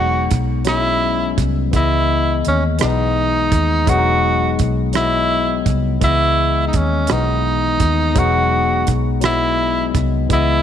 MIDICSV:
0, 0, Header, 1, 5, 480
1, 0, Start_track
1, 0, Key_signature, 4, "major"
1, 0, Tempo, 714286
1, 1163, Time_signature, 6, 3, 24, 8
1, 7140, End_track
2, 0, Start_track
2, 0, Title_t, "Tenor saxophone"
2, 0, Program_c, 0, 66
2, 0, Note_on_c, 0, 66, 91
2, 211, Note_off_c, 0, 66, 0
2, 458, Note_on_c, 0, 64, 94
2, 904, Note_off_c, 0, 64, 0
2, 1184, Note_on_c, 0, 64, 82
2, 1627, Note_off_c, 0, 64, 0
2, 1667, Note_on_c, 0, 61, 72
2, 1769, Note_off_c, 0, 61, 0
2, 1900, Note_on_c, 0, 63, 81
2, 2614, Note_on_c, 0, 66, 102
2, 2624, Note_off_c, 0, 63, 0
2, 3089, Note_off_c, 0, 66, 0
2, 3335, Note_on_c, 0, 64, 90
2, 3782, Note_off_c, 0, 64, 0
2, 4059, Note_on_c, 0, 64, 93
2, 4457, Note_off_c, 0, 64, 0
2, 4486, Note_on_c, 0, 63, 51
2, 4541, Note_on_c, 0, 61, 71
2, 4551, Note_off_c, 0, 63, 0
2, 4786, Note_on_c, 0, 63, 82
2, 4797, Note_off_c, 0, 61, 0
2, 5502, Note_on_c, 0, 66, 91
2, 5512, Note_off_c, 0, 63, 0
2, 5972, Note_off_c, 0, 66, 0
2, 6216, Note_on_c, 0, 64, 90
2, 6663, Note_off_c, 0, 64, 0
2, 6940, Note_on_c, 0, 64, 90
2, 7140, Note_off_c, 0, 64, 0
2, 7140, End_track
3, 0, Start_track
3, 0, Title_t, "Tine electric piano"
3, 0, Program_c, 1, 4
3, 0, Control_c, 1, 64, 127
3, 0, Note_on_c, 1, 54, 65
3, 0, Note_on_c, 1, 56, 57
3, 0, Note_on_c, 1, 59, 57
3, 0, Note_on_c, 1, 63, 73
3, 306, Note_off_c, 1, 54, 0
3, 312, Note_off_c, 1, 56, 0
3, 318, Note_off_c, 1, 59, 0
3, 325, Note_off_c, 1, 63, 0
3, 433, Note_on_c, 1, 54, 60
3, 446, Note_on_c, 1, 56, 54
3, 459, Note_on_c, 1, 59, 50
3, 469, Note_on_c, 1, 61, 60
3, 1025, Note_off_c, 1, 54, 0
3, 1032, Note_off_c, 1, 56, 0
3, 1038, Note_off_c, 1, 59, 0
3, 1044, Note_off_c, 1, 61, 0
3, 1150, Note_on_c, 1, 52, 65
3, 1163, Note_on_c, 1, 56, 66
3, 1173, Control_c, 1, 64, 0
3, 1173, Note_on_c, 1, 59, 61
3, 1186, Note_on_c, 1, 75, 70
3, 1274, Control_c, 1, 64, 127
3, 1744, Note_off_c, 1, 52, 0
3, 1751, Note_off_c, 1, 56, 0
3, 1756, Note_off_c, 1, 59, 0
3, 1762, Note_off_c, 1, 75, 0
3, 1875, Note_on_c, 1, 52, 58
3, 1886, Note_on_c, 1, 56, 56
3, 1896, Note_on_c, 1, 59, 52
3, 1909, Note_on_c, 1, 63, 66
3, 2466, Note_off_c, 1, 52, 0
3, 2472, Note_off_c, 1, 56, 0
3, 2477, Note_off_c, 1, 59, 0
3, 2484, Note_off_c, 1, 63, 0
3, 2593, Note_on_c, 1, 54, 68
3, 2604, Note_on_c, 1, 56, 63
3, 2612, Control_c, 1, 64, 0
3, 2618, Note_on_c, 1, 59, 63
3, 2628, Note_on_c, 1, 62, 63
3, 2659, Note_off_c, 1, 62, 0
3, 2674, Note_on_c, 1, 63, 79
3, 2732, Control_c, 1, 64, 127
3, 3185, Note_off_c, 1, 54, 0
3, 3191, Note_off_c, 1, 56, 0
3, 3198, Note_off_c, 1, 59, 0
3, 3226, Note_off_c, 1, 63, 0
3, 3318, Note_on_c, 1, 54, 59
3, 3330, Note_on_c, 1, 56, 54
3, 3342, Note_on_c, 1, 59, 52
3, 3354, Note_on_c, 1, 75, 63
3, 3908, Note_off_c, 1, 54, 0
3, 3914, Note_off_c, 1, 56, 0
3, 3920, Note_off_c, 1, 59, 0
3, 3926, Note_off_c, 1, 75, 0
3, 4035, Note_on_c, 1, 52, 69
3, 4044, Note_on_c, 1, 56, 61
3, 4052, Control_c, 1, 64, 0
3, 4056, Note_on_c, 1, 59, 60
3, 4068, Note_on_c, 1, 75, 78
3, 4167, Control_c, 1, 64, 127
3, 4626, Note_off_c, 1, 52, 0
3, 4631, Note_off_c, 1, 56, 0
3, 4637, Note_off_c, 1, 59, 0
3, 4643, Note_off_c, 1, 75, 0
3, 4749, Note_on_c, 1, 51, 49
3, 4765, Note_on_c, 1, 56, 49
3, 4774, Note_on_c, 1, 59, 57
3, 4786, Note_on_c, 1, 63, 66
3, 4794, Note_on_c, 1, 52, 60
3, 4800, Note_off_c, 1, 51, 0
3, 5351, Note_off_c, 1, 56, 0
3, 5356, Note_off_c, 1, 59, 0
3, 5362, Note_off_c, 1, 63, 0
3, 5366, Note_off_c, 1, 52, 0
3, 5472, Note_on_c, 1, 54, 72
3, 5484, Note_on_c, 1, 56, 67
3, 5493, Control_c, 1, 64, 0
3, 5496, Note_on_c, 1, 59, 61
3, 5507, Note_on_c, 1, 63, 77
3, 5597, Control_c, 1, 64, 127
3, 6065, Note_off_c, 1, 54, 0
3, 6071, Note_off_c, 1, 56, 0
3, 6077, Note_off_c, 1, 59, 0
3, 6083, Note_off_c, 1, 63, 0
3, 6188, Note_on_c, 1, 54, 60
3, 6201, Note_on_c, 1, 56, 51
3, 6213, Note_on_c, 1, 59, 53
3, 6225, Note_on_c, 1, 75, 66
3, 6783, Note_off_c, 1, 54, 0
3, 6790, Note_off_c, 1, 56, 0
3, 6795, Note_off_c, 1, 59, 0
3, 6802, Note_off_c, 1, 75, 0
3, 6914, Note_on_c, 1, 52, 71
3, 6925, Note_on_c, 1, 56, 65
3, 6933, Control_c, 1, 64, 0
3, 6937, Note_on_c, 1, 59, 68
3, 6950, Note_on_c, 1, 75, 79
3, 7063, Control_c, 1, 64, 127
3, 7140, Note_off_c, 1, 52, 0
3, 7140, Note_off_c, 1, 56, 0
3, 7140, Note_off_c, 1, 59, 0
3, 7140, Note_off_c, 1, 75, 0
3, 7140, End_track
4, 0, Start_track
4, 0, Title_t, "Fingered electric bass"
4, 0, Program_c, 2, 33
4, 0, Note_on_c, 2, 28, 84
4, 181, Note_off_c, 2, 28, 0
4, 220, Note_on_c, 2, 35, 69
4, 905, Note_off_c, 2, 35, 0
4, 933, Note_on_c, 2, 36, 66
4, 1144, Note_off_c, 2, 36, 0
4, 1170, Note_on_c, 2, 37, 82
4, 1620, Note_off_c, 2, 37, 0
4, 1659, Note_on_c, 2, 39, 76
4, 1868, Note_off_c, 2, 39, 0
4, 1898, Note_on_c, 2, 35, 69
4, 2344, Note_off_c, 2, 35, 0
4, 2372, Note_on_c, 2, 39, 74
4, 2584, Note_off_c, 2, 39, 0
4, 2611, Note_on_c, 2, 28, 84
4, 3060, Note_off_c, 2, 28, 0
4, 3098, Note_on_c, 2, 35, 76
4, 3784, Note_off_c, 2, 35, 0
4, 3810, Note_on_c, 2, 36, 75
4, 4023, Note_off_c, 2, 36, 0
4, 4047, Note_on_c, 2, 37, 86
4, 4499, Note_off_c, 2, 37, 0
4, 4537, Note_on_c, 2, 39, 74
4, 4747, Note_off_c, 2, 39, 0
4, 4780, Note_on_c, 2, 35, 68
4, 5225, Note_off_c, 2, 35, 0
4, 5250, Note_on_c, 2, 39, 73
4, 5463, Note_off_c, 2, 39, 0
4, 5487, Note_on_c, 2, 28, 81
4, 5938, Note_off_c, 2, 28, 0
4, 5975, Note_on_c, 2, 35, 69
4, 6662, Note_off_c, 2, 35, 0
4, 6692, Note_on_c, 2, 36, 72
4, 6904, Note_off_c, 2, 36, 0
4, 6928, Note_on_c, 2, 37, 87
4, 7140, Note_off_c, 2, 37, 0
4, 7140, End_track
5, 0, Start_track
5, 0, Title_t, "Drums"
5, 206, Note_on_c, 9, 42, 62
5, 211, Note_on_c, 9, 36, 80
5, 273, Note_off_c, 9, 42, 0
5, 279, Note_off_c, 9, 36, 0
5, 435, Note_on_c, 9, 42, 59
5, 451, Note_on_c, 9, 37, 90
5, 502, Note_off_c, 9, 42, 0
5, 518, Note_off_c, 9, 37, 0
5, 926, Note_on_c, 9, 36, 81
5, 927, Note_on_c, 9, 42, 57
5, 993, Note_off_c, 9, 36, 0
5, 994, Note_off_c, 9, 42, 0
5, 1163, Note_on_c, 9, 42, 57
5, 1164, Note_on_c, 9, 36, 85
5, 1230, Note_off_c, 9, 42, 0
5, 1231, Note_off_c, 9, 36, 0
5, 1644, Note_on_c, 9, 42, 63
5, 1711, Note_off_c, 9, 42, 0
5, 1873, Note_on_c, 9, 42, 64
5, 1889, Note_on_c, 9, 37, 84
5, 1940, Note_off_c, 9, 42, 0
5, 1957, Note_off_c, 9, 37, 0
5, 2364, Note_on_c, 9, 36, 84
5, 2364, Note_on_c, 9, 42, 63
5, 2431, Note_off_c, 9, 42, 0
5, 2432, Note_off_c, 9, 36, 0
5, 2603, Note_on_c, 9, 36, 85
5, 2603, Note_on_c, 9, 42, 68
5, 2670, Note_off_c, 9, 36, 0
5, 2670, Note_off_c, 9, 42, 0
5, 3083, Note_on_c, 9, 42, 65
5, 3089, Note_on_c, 9, 36, 74
5, 3151, Note_off_c, 9, 42, 0
5, 3156, Note_off_c, 9, 36, 0
5, 3312, Note_on_c, 9, 42, 61
5, 3329, Note_on_c, 9, 37, 87
5, 3380, Note_off_c, 9, 42, 0
5, 3396, Note_off_c, 9, 37, 0
5, 3803, Note_on_c, 9, 36, 86
5, 3805, Note_on_c, 9, 42, 59
5, 3871, Note_off_c, 9, 36, 0
5, 3872, Note_off_c, 9, 42, 0
5, 4042, Note_on_c, 9, 36, 87
5, 4042, Note_on_c, 9, 42, 65
5, 4109, Note_off_c, 9, 36, 0
5, 4109, Note_off_c, 9, 42, 0
5, 4523, Note_on_c, 9, 42, 66
5, 4529, Note_on_c, 9, 36, 73
5, 4590, Note_off_c, 9, 42, 0
5, 4596, Note_off_c, 9, 36, 0
5, 4752, Note_on_c, 9, 42, 63
5, 4769, Note_on_c, 9, 37, 90
5, 4819, Note_off_c, 9, 42, 0
5, 4836, Note_off_c, 9, 37, 0
5, 5240, Note_on_c, 9, 42, 59
5, 5242, Note_on_c, 9, 36, 88
5, 5308, Note_off_c, 9, 42, 0
5, 5310, Note_off_c, 9, 36, 0
5, 5481, Note_on_c, 9, 36, 88
5, 5481, Note_on_c, 9, 42, 58
5, 5548, Note_off_c, 9, 36, 0
5, 5548, Note_off_c, 9, 42, 0
5, 5960, Note_on_c, 9, 42, 63
5, 5968, Note_on_c, 9, 36, 73
5, 6027, Note_off_c, 9, 42, 0
5, 6035, Note_off_c, 9, 36, 0
5, 6192, Note_on_c, 9, 42, 62
5, 6209, Note_on_c, 9, 37, 90
5, 6259, Note_off_c, 9, 42, 0
5, 6276, Note_off_c, 9, 37, 0
5, 6684, Note_on_c, 9, 36, 88
5, 6685, Note_on_c, 9, 42, 58
5, 6751, Note_off_c, 9, 36, 0
5, 6752, Note_off_c, 9, 42, 0
5, 6921, Note_on_c, 9, 42, 61
5, 6922, Note_on_c, 9, 36, 86
5, 6988, Note_off_c, 9, 42, 0
5, 6989, Note_off_c, 9, 36, 0
5, 7140, End_track
0, 0, End_of_file